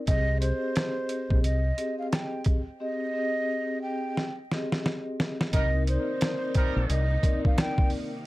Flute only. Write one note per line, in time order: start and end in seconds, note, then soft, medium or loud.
0.07 0.38 D#5 loud
0.41 1.40 C5 loud
1.44 1.96 D#5 medium
1.99 2.11 F5 medium
2.12 2.43 G5 medium
2.80 3.79 D#5 loud
3.82 4.34 G5 medium
5.53 5.83 D#5 loud
5.88 6.86 C5 medium
6.89 7.41 D#5 medium
7.46 7.57 F5 medium
7.60 7.90 G5 medium